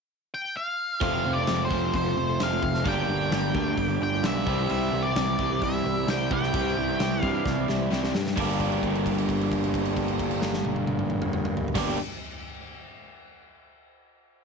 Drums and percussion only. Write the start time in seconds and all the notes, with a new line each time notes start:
1.01 kick, open hi-hat
1.47 snare, open hi-hat
1.71 kick
1.94 kick, open hi-hat
2.40 snare, open hi-hat
2.63 kick
2.74 snare
2.85 kick, open hi-hat
3.32 snare, open hi-hat
3.55 kick
3.78 kick, open hi-hat
4.24 snare, open hi-hat
4.47 kick
4.70 open hi-hat
5.16 snare, open hi-hat
5.39 kick
5.62 kick, open hi-hat
6.08 snare, open hi-hat
6.31 kick
6.43 snare
6.54 kick, open hi-hat
7.00 snare, open hi-hat
7.23 kick
7.46 kick, snare
7.69 snare
7.92 snare
8.04 snare
8.15 snare
8.27 snare
8.37 kick, crash
8.60 kick, crash
8.72 crash
8.83 kick, crash
8.95 crash
9.06 kick, crash
9.18 crash
9.29 kick, crash
9.41 crash
9.52 kick, crash
9.64 crash
9.74 kick, crash
9.85 crash
9.97 kick, crash
10.08 crash
10.19 kick, crash
10.31 crash
10.42 snare
10.54 snare
10.65 high tom
10.76 high tom
10.87 high tom
10.99 mid tom
11.10 mid tom
11.22 mid tom
11.33 mid tom
11.45 mid tom
11.57 floor tom
11.68 floor tom
11.75 kick, snare, crash